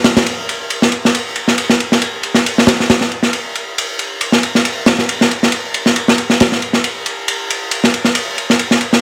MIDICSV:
0, 0, Header, 1, 2, 480
1, 0, Start_track
1, 0, Tempo, 437956
1, 294, Time_signature, 4, 2, 24, 8
1, 9875, End_track
2, 0, Start_track
2, 0, Title_t, "Drums"
2, 48, Note_on_c, 9, 38, 95
2, 48, Note_on_c, 9, 51, 78
2, 157, Note_off_c, 9, 51, 0
2, 158, Note_off_c, 9, 38, 0
2, 183, Note_on_c, 9, 38, 105
2, 185, Note_on_c, 9, 51, 78
2, 289, Note_off_c, 9, 51, 0
2, 289, Note_on_c, 9, 51, 82
2, 292, Note_off_c, 9, 38, 0
2, 399, Note_off_c, 9, 51, 0
2, 537, Note_on_c, 9, 51, 64
2, 646, Note_off_c, 9, 51, 0
2, 770, Note_on_c, 9, 51, 71
2, 880, Note_off_c, 9, 51, 0
2, 902, Note_on_c, 9, 38, 49
2, 1006, Note_on_c, 9, 51, 62
2, 1011, Note_off_c, 9, 38, 0
2, 1116, Note_off_c, 9, 51, 0
2, 1152, Note_on_c, 9, 38, 43
2, 1256, Note_on_c, 9, 51, 78
2, 1262, Note_off_c, 9, 38, 0
2, 1366, Note_off_c, 9, 51, 0
2, 1487, Note_on_c, 9, 51, 56
2, 1596, Note_off_c, 9, 51, 0
2, 1619, Note_on_c, 9, 38, 39
2, 1728, Note_off_c, 9, 38, 0
2, 1729, Note_on_c, 9, 51, 77
2, 1839, Note_off_c, 9, 51, 0
2, 1858, Note_on_c, 9, 38, 48
2, 1968, Note_off_c, 9, 38, 0
2, 1975, Note_on_c, 9, 51, 56
2, 2085, Note_off_c, 9, 51, 0
2, 2104, Note_on_c, 9, 38, 42
2, 2210, Note_on_c, 9, 51, 75
2, 2214, Note_off_c, 9, 38, 0
2, 2319, Note_off_c, 9, 51, 0
2, 2447, Note_on_c, 9, 51, 51
2, 2557, Note_off_c, 9, 51, 0
2, 2570, Note_on_c, 9, 38, 44
2, 2680, Note_off_c, 9, 38, 0
2, 2698, Note_on_c, 9, 51, 77
2, 2808, Note_off_c, 9, 51, 0
2, 2831, Note_on_c, 9, 38, 49
2, 2927, Note_off_c, 9, 38, 0
2, 2927, Note_on_c, 9, 38, 108
2, 2942, Note_on_c, 9, 51, 73
2, 3037, Note_off_c, 9, 38, 0
2, 3051, Note_off_c, 9, 51, 0
2, 3071, Note_on_c, 9, 38, 43
2, 3176, Note_off_c, 9, 38, 0
2, 3176, Note_on_c, 9, 38, 90
2, 3177, Note_on_c, 9, 51, 67
2, 3286, Note_off_c, 9, 38, 0
2, 3287, Note_off_c, 9, 51, 0
2, 3298, Note_on_c, 9, 38, 40
2, 3408, Note_off_c, 9, 38, 0
2, 3415, Note_on_c, 9, 51, 45
2, 3524, Note_off_c, 9, 51, 0
2, 3536, Note_on_c, 9, 38, 34
2, 3646, Note_off_c, 9, 38, 0
2, 3649, Note_on_c, 9, 51, 66
2, 3759, Note_off_c, 9, 51, 0
2, 3895, Note_on_c, 9, 51, 50
2, 4005, Note_off_c, 9, 51, 0
2, 4145, Note_on_c, 9, 51, 72
2, 4255, Note_off_c, 9, 51, 0
2, 4373, Note_on_c, 9, 51, 57
2, 4483, Note_off_c, 9, 51, 0
2, 4612, Note_on_c, 9, 51, 73
2, 4721, Note_off_c, 9, 51, 0
2, 4739, Note_on_c, 9, 38, 44
2, 4849, Note_off_c, 9, 38, 0
2, 4856, Note_on_c, 9, 51, 63
2, 4966, Note_off_c, 9, 51, 0
2, 4989, Note_on_c, 9, 38, 39
2, 5096, Note_on_c, 9, 51, 76
2, 5098, Note_off_c, 9, 38, 0
2, 5206, Note_off_c, 9, 51, 0
2, 5330, Note_on_c, 9, 38, 92
2, 5332, Note_on_c, 9, 51, 65
2, 5440, Note_off_c, 9, 38, 0
2, 5442, Note_off_c, 9, 51, 0
2, 5464, Note_on_c, 9, 38, 40
2, 5573, Note_off_c, 9, 38, 0
2, 5577, Note_on_c, 9, 51, 80
2, 5687, Note_off_c, 9, 51, 0
2, 5711, Note_on_c, 9, 38, 47
2, 5821, Note_off_c, 9, 38, 0
2, 5822, Note_on_c, 9, 51, 59
2, 5932, Note_off_c, 9, 51, 0
2, 5951, Note_on_c, 9, 38, 39
2, 6049, Note_on_c, 9, 51, 73
2, 6061, Note_off_c, 9, 38, 0
2, 6159, Note_off_c, 9, 51, 0
2, 6293, Note_on_c, 9, 51, 61
2, 6402, Note_off_c, 9, 51, 0
2, 6421, Note_on_c, 9, 38, 43
2, 6531, Note_off_c, 9, 38, 0
2, 6531, Note_on_c, 9, 51, 76
2, 6640, Note_off_c, 9, 51, 0
2, 6667, Note_on_c, 9, 38, 50
2, 6772, Note_on_c, 9, 51, 61
2, 6776, Note_off_c, 9, 38, 0
2, 6882, Note_off_c, 9, 51, 0
2, 6902, Note_on_c, 9, 38, 39
2, 7011, Note_off_c, 9, 38, 0
2, 7016, Note_on_c, 9, 51, 68
2, 7024, Note_on_c, 9, 38, 84
2, 7125, Note_off_c, 9, 51, 0
2, 7134, Note_off_c, 9, 38, 0
2, 7145, Note_on_c, 9, 38, 40
2, 7255, Note_off_c, 9, 38, 0
2, 7256, Note_on_c, 9, 51, 52
2, 7366, Note_off_c, 9, 51, 0
2, 7380, Note_on_c, 9, 38, 36
2, 7489, Note_off_c, 9, 38, 0
2, 7496, Note_on_c, 9, 51, 76
2, 7606, Note_off_c, 9, 51, 0
2, 7736, Note_on_c, 9, 51, 63
2, 7846, Note_off_c, 9, 51, 0
2, 7979, Note_on_c, 9, 51, 78
2, 8088, Note_off_c, 9, 51, 0
2, 8224, Note_on_c, 9, 51, 64
2, 8334, Note_off_c, 9, 51, 0
2, 8453, Note_on_c, 9, 51, 70
2, 8563, Note_off_c, 9, 51, 0
2, 8589, Note_on_c, 9, 38, 45
2, 8699, Note_off_c, 9, 38, 0
2, 8700, Note_on_c, 9, 51, 61
2, 8809, Note_off_c, 9, 51, 0
2, 8818, Note_on_c, 9, 38, 36
2, 8927, Note_off_c, 9, 38, 0
2, 8931, Note_on_c, 9, 51, 82
2, 9041, Note_off_c, 9, 51, 0
2, 9183, Note_on_c, 9, 51, 53
2, 9293, Note_off_c, 9, 51, 0
2, 9315, Note_on_c, 9, 38, 40
2, 9417, Note_on_c, 9, 51, 68
2, 9424, Note_off_c, 9, 38, 0
2, 9527, Note_off_c, 9, 51, 0
2, 9546, Note_on_c, 9, 38, 42
2, 9653, Note_on_c, 9, 51, 58
2, 9655, Note_off_c, 9, 38, 0
2, 9763, Note_off_c, 9, 51, 0
2, 9785, Note_on_c, 9, 38, 43
2, 9875, Note_off_c, 9, 38, 0
2, 9875, End_track
0, 0, End_of_file